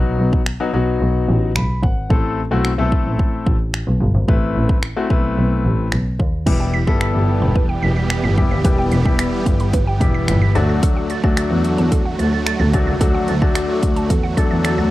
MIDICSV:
0, 0, Header, 1, 6, 480
1, 0, Start_track
1, 0, Key_signature, 1, "minor"
1, 0, Tempo, 545455
1, 1850, Time_signature, 4, 2, 24, 8
1, 13119, End_track
2, 0, Start_track
2, 0, Title_t, "Synth arpeggio sound"
2, 0, Program_c, 0, 84
2, 5689, Note_on_c, 0, 71, 91
2, 5777, Note_off_c, 0, 71, 0
2, 5810, Note_on_c, 0, 79, 77
2, 5898, Note_off_c, 0, 79, 0
2, 5928, Note_on_c, 0, 95, 92
2, 6016, Note_off_c, 0, 95, 0
2, 6049, Note_on_c, 0, 95, 88
2, 6137, Note_off_c, 0, 95, 0
2, 6169, Note_on_c, 0, 95, 92
2, 6257, Note_off_c, 0, 95, 0
2, 6529, Note_on_c, 0, 83, 77
2, 6617, Note_off_c, 0, 83, 0
2, 6648, Note_on_c, 0, 71, 90
2, 6736, Note_off_c, 0, 71, 0
2, 6767, Note_on_c, 0, 79, 75
2, 6856, Note_off_c, 0, 79, 0
2, 6887, Note_on_c, 0, 95, 84
2, 6976, Note_off_c, 0, 95, 0
2, 7009, Note_on_c, 0, 95, 83
2, 7097, Note_off_c, 0, 95, 0
2, 7128, Note_on_c, 0, 95, 94
2, 7217, Note_off_c, 0, 95, 0
2, 7250, Note_on_c, 0, 95, 83
2, 7337, Note_off_c, 0, 95, 0
2, 7371, Note_on_c, 0, 95, 88
2, 7458, Note_off_c, 0, 95, 0
2, 7490, Note_on_c, 0, 95, 83
2, 7578, Note_off_c, 0, 95, 0
2, 7611, Note_on_c, 0, 71, 91
2, 7698, Note_off_c, 0, 71, 0
2, 7729, Note_on_c, 0, 79, 79
2, 7817, Note_off_c, 0, 79, 0
2, 7852, Note_on_c, 0, 95, 94
2, 7939, Note_off_c, 0, 95, 0
2, 7971, Note_on_c, 0, 95, 85
2, 8059, Note_off_c, 0, 95, 0
2, 8092, Note_on_c, 0, 95, 85
2, 8179, Note_off_c, 0, 95, 0
2, 8451, Note_on_c, 0, 83, 77
2, 8539, Note_off_c, 0, 83, 0
2, 8569, Note_on_c, 0, 71, 89
2, 8657, Note_off_c, 0, 71, 0
2, 8689, Note_on_c, 0, 79, 80
2, 8777, Note_off_c, 0, 79, 0
2, 8808, Note_on_c, 0, 95, 88
2, 8896, Note_off_c, 0, 95, 0
2, 8928, Note_on_c, 0, 95, 82
2, 9016, Note_off_c, 0, 95, 0
2, 9048, Note_on_c, 0, 95, 100
2, 9136, Note_off_c, 0, 95, 0
2, 9167, Note_on_c, 0, 95, 82
2, 9256, Note_off_c, 0, 95, 0
2, 9286, Note_on_c, 0, 93, 91
2, 9375, Note_off_c, 0, 93, 0
2, 9409, Note_on_c, 0, 93, 79
2, 9497, Note_off_c, 0, 93, 0
2, 9530, Note_on_c, 0, 69, 94
2, 9618, Note_off_c, 0, 69, 0
2, 9650, Note_on_c, 0, 78, 78
2, 9738, Note_off_c, 0, 78, 0
2, 9771, Note_on_c, 0, 93, 94
2, 9859, Note_off_c, 0, 93, 0
2, 9891, Note_on_c, 0, 93, 87
2, 9978, Note_off_c, 0, 93, 0
2, 10009, Note_on_c, 0, 93, 91
2, 10097, Note_off_c, 0, 93, 0
2, 10369, Note_on_c, 0, 81, 75
2, 10457, Note_off_c, 0, 81, 0
2, 10488, Note_on_c, 0, 69, 91
2, 10577, Note_off_c, 0, 69, 0
2, 10608, Note_on_c, 0, 78, 75
2, 10697, Note_off_c, 0, 78, 0
2, 10727, Note_on_c, 0, 93, 84
2, 10816, Note_off_c, 0, 93, 0
2, 10848, Note_on_c, 0, 93, 84
2, 10936, Note_off_c, 0, 93, 0
2, 10968, Note_on_c, 0, 93, 94
2, 11056, Note_off_c, 0, 93, 0
2, 11085, Note_on_c, 0, 93, 83
2, 11174, Note_off_c, 0, 93, 0
2, 11207, Note_on_c, 0, 93, 86
2, 11296, Note_off_c, 0, 93, 0
2, 11326, Note_on_c, 0, 93, 81
2, 11415, Note_off_c, 0, 93, 0
2, 11446, Note_on_c, 0, 69, 91
2, 11535, Note_off_c, 0, 69, 0
2, 11568, Note_on_c, 0, 78, 82
2, 11656, Note_off_c, 0, 78, 0
2, 11687, Note_on_c, 0, 93, 95
2, 11776, Note_off_c, 0, 93, 0
2, 11809, Note_on_c, 0, 93, 89
2, 11897, Note_off_c, 0, 93, 0
2, 11928, Note_on_c, 0, 93, 86
2, 12016, Note_off_c, 0, 93, 0
2, 12288, Note_on_c, 0, 81, 79
2, 12377, Note_off_c, 0, 81, 0
2, 12408, Note_on_c, 0, 69, 86
2, 12496, Note_off_c, 0, 69, 0
2, 12526, Note_on_c, 0, 78, 80
2, 12615, Note_off_c, 0, 78, 0
2, 12646, Note_on_c, 0, 93, 89
2, 12735, Note_off_c, 0, 93, 0
2, 12767, Note_on_c, 0, 93, 86
2, 12856, Note_off_c, 0, 93, 0
2, 12886, Note_on_c, 0, 93, 91
2, 12975, Note_off_c, 0, 93, 0
2, 13008, Note_on_c, 0, 93, 80
2, 13097, Note_off_c, 0, 93, 0
2, 13119, End_track
3, 0, Start_track
3, 0, Title_t, "Grand piano"
3, 0, Program_c, 1, 0
3, 0, Note_on_c, 1, 54, 87
3, 0, Note_on_c, 1, 59, 80
3, 0, Note_on_c, 1, 63, 78
3, 0, Note_on_c, 1, 66, 96
3, 350, Note_off_c, 1, 54, 0
3, 351, Note_off_c, 1, 59, 0
3, 352, Note_off_c, 1, 63, 0
3, 353, Note_off_c, 1, 66, 0
3, 529, Note_on_c, 1, 54, 88
3, 530, Note_on_c, 1, 59, 80
3, 531, Note_on_c, 1, 63, 81
3, 532, Note_on_c, 1, 66, 94
3, 614, Note_off_c, 1, 54, 0
3, 614, Note_off_c, 1, 59, 0
3, 615, Note_off_c, 1, 63, 0
3, 615, Note_off_c, 1, 66, 0
3, 646, Note_on_c, 1, 54, 89
3, 648, Note_on_c, 1, 59, 82
3, 649, Note_on_c, 1, 63, 78
3, 651, Note_on_c, 1, 66, 95
3, 1322, Note_off_c, 1, 54, 0
3, 1323, Note_off_c, 1, 59, 0
3, 1323, Note_off_c, 1, 63, 0
3, 1324, Note_off_c, 1, 66, 0
3, 1372, Note_on_c, 1, 83, 71
3, 1594, Note_off_c, 1, 83, 0
3, 1613, Note_on_c, 1, 78, 73
3, 1835, Note_off_c, 1, 78, 0
3, 1849, Note_on_c, 1, 57, 83
3, 1849, Note_on_c, 1, 60, 80
3, 1851, Note_on_c, 1, 64, 78
3, 1853, Note_on_c, 1, 69, 96
3, 2102, Note_off_c, 1, 57, 0
3, 2102, Note_off_c, 1, 60, 0
3, 2103, Note_off_c, 1, 64, 0
3, 2104, Note_off_c, 1, 69, 0
3, 2208, Note_on_c, 1, 57, 90
3, 2211, Note_on_c, 1, 60, 86
3, 2212, Note_on_c, 1, 64, 79
3, 2213, Note_on_c, 1, 66, 97
3, 2378, Note_off_c, 1, 57, 0
3, 2379, Note_off_c, 1, 60, 0
3, 2380, Note_off_c, 1, 64, 0
3, 2380, Note_off_c, 1, 66, 0
3, 2448, Note_on_c, 1, 57, 91
3, 2450, Note_on_c, 1, 60, 83
3, 2451, Note_on_c, 1, 64, 84
3, 2452, Note_on_c, 1, 69, 98
3, 3123, Note_off_c, 1, 57, 0
3, 3124, Note_off_c, 1, 60, 0
3, 3124, Note_off_c, 1, 64, 0
3, 3125, Note_off_c, 1, 69, 0
3, 3769, Note_on_c, 1, 57, 88
3, 3770, Note_on_c, 1, 60, 75
3, 3772, Note_on_c, 1, 64, 76
3, 3774, Note_on_c, 1, 71, 94
3, 4191, Note_off_c, 1, 57, 0
3, 4191, Note_off_c, 1, 60, 0
3, 4192, Note_off_c, 1, 64, 0
3, 4193, Note_off_c, 1, 71, 0
3, 4368, Note_on_c, 1, 57, 89
3, 4370, Note_on_c, 1, 60, 80
3, 4371, Note_on_c, 1, 64, 81
3, 4373, Note_on_c, 1, 66, 96
3, 4454, Note_off_c, 1, 57, 0
3, 4454, Note_off_c, 1, 60, 0
3, 4455, Note_off_c, 1, 64, 0
3, 4456, Note_off_c, 1, 66, 0
3, 4489, Note_on_c, 1, 57, 88
3, 4490, Note_on_c, 1, 60, 79
3, 4491, Note_on_c, 1, 64, 83
3, 4493, Note_on_c, 1, 71, 93
3, 5164, Note_off_c, 1, 57, 0
3, 5164, Note_off_c, 1, 60, 0
3, 5164, Note_off_c, 1, 64, 0
3, 5166, Note_off_c, 1, 71, 0
3, 5689, Note_on_c, 1, 55, 83
3, 5690, Note_on_c, 1, 59, 77
3, 5692, Note_on_c, 1, 64, 75
3, 5694, Note_on_c, 1, 67, 93
3, 5942, Note_off_c, 1, 55, 0
3, 5943, Note_off_c, 1, 59, 0
3, 5944, Note_off_c, 1, 64, 0
3, 5945, Note_off_c, 1, 67, 0
3, 6046, Note_on_c, 1, 55, 85
3, 6047, Note_on_c, 1, 59, 80
3, 6049, Note_on_c, 1, 64, 77
3, 6051, Note_on_c, 1, 69, 95
3, 6722, Note_off_c, 1, 55, 0
3, 6722, Note_off_c, 1, 59, 0
3, 6723, Note_off_c, 1, 64, 0
3, 6724, Note_off_c, 1, 69, 0
3, 7368, Note_on_c, 1, 55, 81
3, 7370, Note_on_c, 1, 59, 77
3, 7371, Note_on_c, 1, 64, 81
3, 7373, Note_on_c, 1, 67, 92
3, 7538, Note_off_c, 1, 55, 0
3, 7539, Note_off_c, 1, 59, 0
3, 7539, Note_off_c, 1, 64, 0
3, 7540, Note_off_c, 1, 67, 0
3, 7607, Note_on_c, 1, 55, 87
3, 7610, Note_on_c, 1, 59, 73
3, 7610, Note_on_c, 1, 64, 79
3, 7613, Note_on_c, 1, 67, 92
3, 7861, Note_off_c, 1, 55, 0
3, 7862, Note_off_c, 1, 59, 0
3, 7863, Note_off_c, 1, 64, 0
3, 7864, Note_off_c, 1, 67, 0
3, 7966, Note_on_c, 1, 55, 86
3, 7967, Note_on_c, 1, 59, 78
3, 7969, Note_on_c, 1, 64, 78
3, 7971, Note_on_c, 1, 67, 95
3, 8558, Note_off_c, 1, 55, 0
3, 8558, Note_off_c, 1, 59, 0
3, 8559, Note_off_c, 1, 64, 0
3, 8560, Note_off_c, 1, 67, 0
3, 8805, Note_on_c, 1, 55, 78
3, 8806, Note_on_c, 1, 59, 75
3, 8807, Note_on_c, 1, 64, 74
3, 8809, Note_on_c, 1, 67, 85
3, 9284, Note_on_c, 1, 54, 89
3, 9287, Note_off_c, 1, 55, 0
3, 9287, Note_on_c, 1, 57, 80
3, 9288, Note_off_c, 1, 59, 0
3, 9288, Note_on_c, 1, 62, 84
3, 9289, Note_off_c, 1, 64, 0
3, 9290, Note_off_c, 1, 67, 0
3, 9290, Note_on_c, 1, 66, 101
3, 9767, Note_off_c, 1, 54, 0
3, 9769, Note_off_c, 1, 57, 0
3, 9769, Note_off_c, 1, 62, 0
3, 9770, Note_off_c, 1, 66, 0
3, 9886, Note_on_c, 1, 54, 85
3, 9887, Note_on_c, 1, 57, 81
3, 9889, Note_on_c, 1, 62, 80
3, 9890, Note_on_c, 1, 66, 98
3, 10562, Note_off_c, 1, 54, 0
3, 10562, Note_off_c, 1, 57, 0
3, 10563, Note_off_c, 1, 62, 0
3, 10564, Note_off_c, 1, 66, 0
3, 11205, Note_on_c, 1, 54, 90
3, 11207, Note_on_c, 1, 57, 77
3, 11209, Note_on_c, 1, 62, 78
3, 11211, Note_on_c, 1, 66, 92
3, 11376, Note_off_c, 1, 54, 0
3, 11377, Note_off_c, 1, 57, 0
3, 11378, Note_off_c, 1, 62, 0
3, 11379, Note_off_c, 1, 66, 0
3, 11445, Note_on_c, 1, 54, 86
3, 11446, Note_on_c, 1, 57, 74
3, 11448, Note_on_c, 1, 62, 75
3, 11449, Note_on_c, 1, 66, 93
3, 11700, Note_off_c, 1, 54, 0
3, 11701, Note_off_c, 1, 57, 0
3, 11702, Note_off_c, 1, 62, 0
3, 11702, Note_off_c, 1, 66, 0
3, 11804, Note_on_c, 1, 54, 82
3, 11807, Note_on_c, 1, 57, 80
3, 11807, Note_on_c, 1, 62, 81
3, 11809, Note_on_c, 1, 66, 96
3, 12397, Note_off_c, 1, 54, 0
3, 12398, Note_off_c, 1, 57, 0
3, 12398, Note_off_c, 1, 62, 0
3, 12399, Note_off_c, 1, 66, 0
3, 12646, Note_on_c, 1, 54, 81
3, 12647, Note_on_c, 1, 57, 70
3, 12649, Note_on_c, 1, 62, 74
3, 12650, Note_on_c, 1, 69, 90
3, 13119, Note_off_c, 1, 54, 0
3, 13119, Note_off_c, 1, 57, 0
3, 13119, Note_off_c, 1, 62, 0
3, 13119, Note_off_c, 1, 69, 0
3, 13119, End_track
4, 0, Start_track
4, 0, Title_t, "Supersaw synth"
4, 0, Program_c, 2, 81
4, 5693, Note_on_c, 2, 55, 82
4, 5693, Note_on_c, 2, 67, 96
4, 5694, Note_on_c, 2, 52, 81
4, 5694, Note_on_c, 2, 59, 77
4, 9256, Note_off_c, 2, 55, 0
4, 9256, Note_off_c, 2, 67, 0
4, 9257, Note_off_c, 2, 52, 0
4, 9257, Note_off_c, 2, 59, 0
4, 9288, Note_on_c, 2, 66, 89
4, 9289, Note_on_c, 2, 54, 68
4, 9289, Note_on_c, 2, 57, 73
4, 9290, Note_on_c, 2, 50, 81
4, 13119, Note_off_c, 2, 50, 0
4, 13119, Note_off_c, 2, 54, 0
4, 13119, Note_off_c, 2, 57, 0
4, 13119, Note_off_c, 2, 66, 0
4, 13119, End_track
5, 0, Start_track
5, 0, Title_t, "Double bass"
5, 0, Program_c, 3, 43
5, 0, Note_on_c, 3, 35, 104
5, 108, Note_off_c, 3, 35, 0
5, 168, Note_on_c, 3, 35, 99
5, 436, Note_off_c, 3, 35, 0
5, 650, Note_on_c, 3, 35, 86
5, 828, Note_off_c, 3, 35, 0
5, 889, Note_on_c, 3, 35, 93
5, 1068, Note_off_c, 3, 35, 0
5, 1132, Note_on_c, 3, 33, 98
5, 1310, Note_off_c, 3, 33, 0
5, 1371, Note_on_c, 3, 35, 86
5, 1549, Note_off_c, 3, 35, 0
5, 1612, Note_on_c, 3, 32, 89
5, 1790, Note_off_c, 3, 32, 0
5, 1851, Note_on_c, 3, 33, 98
5, 2118, Note_off_c, 3, 33, 0
5, 2211, Note_on_c, 3, 35, 85
5, 2300, Note_off_c, 3, 35, 0
5, 2452, Note_on_c, 3, 35, 82
5, 2540, Note_off_c, 3, 35, 0
5, 2691, Note_on_c, 3, 33, 85
5, 2869, Note_off_c, 3, 33, 0
5, 3049, Note_on_c, 3, 33, 91
5, 3228, Note_off_c, 3, 33, 0
5, 3409, Note_on_c, 3, 35, 90
5, 3499, Note_off_c, 3, 35, 0
5, 3529, Note_on_c, 3, 31, 94
5, 3619, Note_off_c, 3, 31, 0
5, 3650, Note_on_c, 3, 32, 84
5, 3739, Note_off_c, 3, 32, 0
5, 3770, Note_on_c, 3, 33, 107
5, 3949, Note_off_c, 3, 33, 0
5, 4012, Note_on_c, 3, 33, 96
5, 4279, Note_off_c, 3, 33, 0
5, 4490, Note_on_c, 3, 35, 86
5, 4669, Note_off_c, 3, 35, 0
5, 4732, Note_on_c, 3, 35, 95
5, 4910, Note_off_c, 3, 35, 0
5, 4971, Note_on_c, 3, 33, 92
5, 5149, Note_off_c, 3, 33, 0
5, 5213, Note_on_c, 3, 35, 84
5, 5391, Note_off_c, 3, 35, 0
5, 5452, Note_on_c, 3, 39, 88
5, 5630, Note_off_c, 3, 39, 0
5, 5691, Note_on_c, 3, 28, 108
5, 5958, Note_off_c, 3, 28, 0
5, 6049, Note_on_c, 3, 31, 92
5, 6139, Note_off_c, 3, 31, 0
5, 6290, Note_on_c, 3, 31, 82
5, 6380, Note_off_c, 3, 31, 0
5, 6530, Note_on_c, 3, 28, 88
5, 6709, Note_off_c, 3, 28, 0
5, 6891, Note_on_c, 3, 28, 91
5, 7069, Note_off_c, 3, 28, 0
5, 7252, Note_on_c, 3, 31, 86
5, 7341, Note_off_c, 3, 31, 0
5, 7371, Note_on_c, 3, 28, 86
5, 7460, Note_off_c, 3, 28, 0
5, 7491, Note_on_c, 3, 39, 84
5, 7580, Note_off_c, 3, 39, 0
5, 7609, Note_on_c, 3, 28, 107
5, 7788, Note_off_c, 3, 28, 0
5, 7850, Note_on_c, 3, 28, 97
5, 8118, Note_off_c, 3, 28, 0
5, 8328, Note_on_c, 3, 31, 103
5, 8507, Note_off_c, 3, 31, 0
5, 8568, Note_on_c, 3, 31, 101
5, 8802, Note_off_c, 3, 31, 0
5, 8807, Note_on_c, 3, 28, 99
5, 8987, Note_off_c, 3, 28, 0
5, 9049, Note_on_c, 3, 31, 96
5, 9228, Note_off_c, 3, 31, 0
5, 9290, Note_on_c, 3, 38, 96
5, 9736, Note_off_c, 3, 38, 0
5, 9888, Note_on_c, 3, 38, 85
5, 9978, Note_off_c, 3, 38, 0
5, 10129, Note_on_c, 3, 40, 86
5, 10219, Note_off_c, 3, 40, 0
5, 10370, Note_on_c, 3, 40, 84
5, 10548, Note_off_c, 3, 40, 0
5, 10728, Note_on_c, 3, 38, 89
5, 10908, Note_off_c, 3, 38, 0
5, 11089, Note_on_c, 3, 38, 90
5, 11179, Note_off_c, 3, 38, 0
5, 11211, Note_on_c, 3, 36, 89
5, 11300, Note_off_c, 3, 36, 0
5, 11330, Note_on_c, 3, 37, 92
5, 11419, Note_off_c, 3, 37, 0
5, 11448, Note_on_c, 3, 38, 105
5, 11627, Note_off_c, 3, 38, 0
5, 11692, Note_on_c, 3, 38, 102
5, 11959, Note_off_c, 3, 38, 0
5, 12169, Note_on_c, 3, 38, 87
5, 12348, Note_off_c, 3, 38, 0
5, 12409, Note_on_c, 3, 40, 91
5, 12588, Note_off_c, 3, 40, 0
5, 12648, Note_on_c, 3, 40, 51
5, 12738, Note_off_c, 3, 40, 0
5, 12773, Note_on_c, 3, 40, 87
5, 12950, Note_off_c, 3, 40, 0
5, 13011, Note_on_c, 3, 38, 87
5, 13100, Note_off_c, 3, 38, 0
5, 13119, End_track
6, 0, Start_track
6, 0, Title_t, "Drums"
6, 289, Note_on_c, 9, 36, 95
6, 377, Note_off_c, 9, 36, 0
6, 408, Note_on_c, 9, 26, 99
6, 496, Note_off_c, 9, 26, 0
6, 1370, Note_on_c, 9, 26, 106
6, 1458, Note_off_c, 9, 26, 0
6, 1613, Note_on_c, 9, 36, 83
6, 1701, Note_off_c, 9, 36, 0
6, 1851, Note_on_c, 9, 36, 116
6, 1939, Note_off_c, 9, 36, 0
6, 2329, Note_on_c, 9, 26, 102
6, 2417, Note_off_c, 9, 26, 0
6, 2570, Note_on_c, 9, 36, 94
6, 2658, Note_off_c, 9, 36, 0
6, 2810, Note_on_c, 9, 36, 85
6, 2898, Note_off_c, 9, 36, 0
6, 3049, Note_on_c, 9, 36, 91
6, 3137, Note_off_c, 9, 36, 0
6, 3290, Note_on_c, 9, 26, 99
6, 3378, Note_off_c, 9, 26, 0
6, 3771, Note_on_c, 9, 36, 122
6, 3859, Note_off_c, 9, 36, 0
6, 4129, Note_on_c, 9, 36, 96
6, 4217, Note_off_c, 9, 36, 0
6, 4248, Note_on_c, 9, 26, 100
6, 4336, Note_off_c, 9, 26, 0
6, 4490, Note_on_c, 9, 36, 93
6, 4578, Note_off_c, 9, 36, 0
6, 5211, Note_on_c, 9, 26, 100
6, 5299, Note_off_c, 9, 26, 0
6, 5453, Note_on_c, 9, 36, 85
6, 5541, Note_off_c, 9, 36, 0
6, 5690, Note_on_c, 9, 49, 95
6, 5691, Note_on_c, 9, 36, 117
6, 5778, Note_off_c, 9, 49, 0
6, 5779, Note_off_c, 9, 36, 0
6, 6049, Note_on_c, 9, 36, 94
6, 6137, Note_off_c, 9, 36, 0
6, 6168, Note_on_c, 9, 26, 105
6, 6256, Note_off_c, 9, 26, 0
6, 6649, Note_on_c, 9, 36, 90
6, 6737, Note_off_c, 9, 36, 0
6, 7129, Note_on_c, 9, 26, 99
6, 7217, Note_off_c, 9, 26, 0
6, 7371, Note_on_c, 9, 36, 85
6, 7459, Note_off_c, 9, 36, 0
6, 7608, Note_on_c, 9, 42, 92
6, 7609, Note_on_c, 9, 36, 122
6, 7696, Note_off_c, 9, 42, 0
6, 7697, Note_off_c, 9, 36, 0
6, 7846, Note_on_c, 9, 42, 73
6, 7934, Note_off_c, 9, 42, 0
6, 7968, Note_on_c, 9, 36, 96
6, 8056, Note_off_c, 9, 36, 0
6, 8087, Note_on_c, 9, 26, 101
6, 8087, Note_on_c, 9, 42, 95
6, 8175, Note_off_c, 9, 26, 0
6, 8175, Note_off_c, 9, 42, 0
6, 8326, Note_on_c, 9, 42, 80
6, 8328, Note_on_c, 9, 36, 96
6, 8414, Note_off_c, 9, 42, 0
6, 8416, Note_off_c, 9, 36, 0
6, 8447, Note_on_c, 9, 42, 49
6, 8535, Note_off_c, 9, 42, 0
6, 8566, Note_on_c, 9, 42, 89
6, 8568, Note_on_c, 9, 36, 90
6, 8654, Note_off_c, 9, 42, 0
6, 8656, Note_off_c, 9, 36, 0
6, 8807, Note_on_c, 9, 36, 93
6, 8809, Note_on_c, 9, 42, 71
6, 8895, Note_off_c, 9, 36, 0
6, 8897, Note_off_c, 9, 42, 0
6, 9048, Note_on_c, 9, 26, 98
6, 9048, Note_on_c, 9, 42, 89
6, 9136, Note_off_c, 9, 26, 0
6, 9136, Note_off_c, 9, 42, 0
6, 9288, Note_on_c, 9, 42, 68
6, 9376, Note_off_c, 9, 42, 0
6, 9529, Note_on_c, 9, 36, 118
6, 9530, Note_on_c, 9, 42, 97
6, 9617, Note_off_c, 9, 36, 0
6, 9618, Note_off_c, 9, 42, 0
6, 9766, Note_on_c, 9, 42, 75
6, 9854, Note_off_c, 9, 42, 0
6, 9889, Note_on_c, 9, 36, 97
6, 9977, Note_off_c, 9, 36, 0
6, 10007, Note_on_c, 9, 26, 99
6, 10007, Note_on_c, 9, 42, 92
6, 10095, Note_off_c, 9, 26, 0
6, 10095, Note_off_c, 9, 42, 0
6, 10248, Note_on_c, 9, 42, 87
6, 10336, Note_off_c, 9, 42, 0
6, 10369, Note_on_c, 9, 42, 51
6, 10457, Note_off_c, 9, 42, 0
6, 10488, Note_on_c, 9, 42, 89
6, 10489, Note_on_c, 9, 36, 91
6, 10576, Note_off_c, 9, 42, 0
6, 10577, Note_off_c, 9, 36, 0
6, 10730, Note_on_c, 9, 42, 67
6, 10818, Note_off_c, 9, 42, 0
6, 10969, Note_on_c, 9, 26, 100
6, 10969, Note_on_c, 9, 42, 84
6, 11057, Note_off_c, 9, 26, 0
6, 11057, Note_off_c, 9, 42, 0
6, 11206, Note_on_c, 9, 42, 73
6, 11211, Note_on_c, 9, 36, 86
6, 11294, Note_off_c, 9, 42, 0
6, 11299, Note_off_c, 9, 36, 0
6, 11447, Note_on_c, 9, 42, 92
6, 11449, Note_on_c, 9, 36, 120
6, 11535, Note_off_c, 9, 42, 0
6, 11537, Note_off_c, 9, 36, 0
6, 11685, Note_on_c, 9, 42, 76
6, 11773, Note_off_c, 9, 42, 0
6, 11808, Note_on_c, 9, 36, 96
6, 11896, Note_off_c, 9, 36, 0
6, 11928, Note_on_c, 9, 26, 105
6, 11928, Note_on_c, 9, 42, 92
6, 12016, Note_off_c, 9, 26, 0
6, 12016, Note_off_c, 9, 42, 0
6, 12167, Note_on_c, 9, 42, 83
6, 12169, Note_on_c, 9, 36, 90
6, 12255, Note_off_c, 9, 42, 0
6, 12257, Note_off_c, 9, 36, 0
6, 12289, Note_on_c, 9, 42, 53
6, 12377, Note_off_c, 9, 42, 0
6, 12409, Note_on_c, 9, 36, 89
6, 12409, Note_on_c, 9, 42, 92
6, 12497, Note_off_c, 9, 36, 0
6, 12497, Note_off_c, 9, 42, 0
6, 12648, Note_on_c, 9, 36, 96
6, 12652, Note_on_c, 9, 42, 68
6, 12736, Note_off_c, 9, 36, 0
6, 12740, Note_off_c, 9, 42, 0
6, 12889, Note_on_c, 9, 26, 102
6, 12889, Note_on_c, 9, 42, 88
6, 12977, Note_off_c, 9, 26, 0
6, 12977, Note_off_c, 9, 42, 0
6, 13119, End_track
0, 0, End_of_file